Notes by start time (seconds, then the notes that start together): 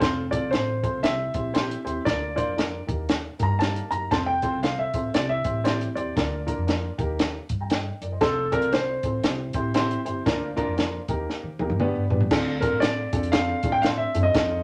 0.00 F1 C4 F4 A4 C5, kick, snare, closed hi-hat
0.31 C4 F4 A4 D5, kick, closed hi-hat
0.43 C2
0.51 A1 C4 F4 A4 C5, snare, closed hi-hat
0.83 C4 F4 A4 C5, kick, closed hi-hat
0.93 C2
1.03 C2 C4 E4 G4 C5 E5, snare, closed hi-hat
1.34 A#1 C4 E4 G4 C5, kick, closed hi-hat
1.54 C4 E4 G4 C5, snare, closed hi-hat
1.71 closed hi-hat
1.85 D#2 C4 E4 G4 C5, closed hi-hat
2.05 D2 A#3 D4 F4 A#4 D5, kick, snare, closed hi-hat
2.36 A#3 D4 F4 C5 D5, kick, closed hi-hat
2.47 F2
2.57 A#3 D4 F4 A#4, snare, closed hi-hat
2.87 D#2 A#3 D#4 G4 A#4, kick, closed hi-hat
3.09 snare, closed hi-hat
3.39 G2 A#3 D#4 G4 A#4 A#5, kick, closed hi-hat
3.59 A#3 D#4 G4 A#4 A5, snare, closed hi-hat
3.76 closed hi-hat
3.91 F#2 A#3 D#4 G4 A#4 A#5, closed hi-hat
4.11 F1 C4 F4 A4 C5 A5, kick, snare, closed hi-hat
4.26 G5
4.42 C4 F4 A4 C5, kick, closed hi-hat
4.53 C2
4.62 C4 F4 A4 C5 F5, snare, closed hi-hat
4.79 E5
4.94 A1 C4 F4 A4 C5, kick, closed hi-hat
5.14 C2 C4 E4 G4 C5 D5, snare, closed hi-hat
5.29 E5
5.44 A1 C4 E4 G4 C5, kick, closed hi-hat
5.64 C4 E4 G4 C5 D5, snare, closed hi-hat
5.81 closed hi-hat
5.95 D#2 C4 E4 G4 C5 D5, closed hi-hat
6.16 D2 A#3 D4 F4 A#4, kick, snare, closed hi-hat
6.46 A#3 D4 F4 A#4, kick, closed hi-hat
6.58 F2
6.67 A#3 D4 F4 A#4, snare, closed hi-hat
6.98 D#2 A#3 D#4 G4 A#4, kick, closed hi-hat
7.19 snare, closed hi-hat
7.49 G2, kick, closed hi-hat
7.60 G5 A#5
7.70 D#5 G5, snare, closed hi-hat
8.01 F#2 A#4 D5, closed hi-hat
8.12 C5 D#5
8.21 F1 C4 F4 A4 C5, kick, snare, closed hi-hat
8.52 C4 F4 A4 A#4 D5, kick, closed hi-hat
8.62 C2, closed hi-hat
8.72 C4 F4 A4 C5 D5, snare, closed hi-hat
9.03 A1 C4 F4 A4 C5, kick, closed hi-hat
9.23 C2 C4 E4 G4 C5, snare, closed hi-hat
9.53 A1 C4 E4 G4 C5, kick, closed hi-hat
9.74 C4 E4 G4 C5, snare, closed hi-hat
9.91 closed hi-hat
10.05 G1 C4 E4 G4 C5, closed hi-hat
10.26 D2 A#3 D4 F4 A#4, kick, snare, closed hi-hat
10.56 A#3 D4 F4 A#4, kick, closed hi-hat
10.67 F2
10.77 A#3 D4 F4 A#4, snare, closed hi-hat
11.08 D#2 A#3 D#4 G4 A#4, kick, closed hi-hat
11.30 snare
11.43 D#3
11.59 D#2 A#3 D#4 G4 A#4, high tom
11.70 G2, high tom
11.80 G1 B3 D4 G4 B4, mid tom
11.96 G1
12.10 G2 B3 D4 G4 B4, floor tom
12.21 floor tom
12.31 D2 C4 D4 F4 A4, kick, snare, crash
12.61 C4 D4 F4 A4 A#4, kick, closed hi-hat
12.72 A2
12.80 C4 D4 F4 A4 D5, snare, closed hi-hat
13.13 F2 C4 D4 F4 A4, kick, closed hi-hat
13.23 closed hi-hat
13.32 C4 D4 F4 A4 F5, snare, closed hi-hat
13.63 A2 C4 D4 F4 A4, kick, closed hi-hat
13.72 G5
13.82 C4 D4 F4 C5 F5, snare, closed hi-hat
13.97 E5
14.15 F#2 C4 D4 F4 A4, closed hi-hat
14.23 D#5
14.34 F2 C4 D#4 F4 A4, kick, snare, closed hi-hat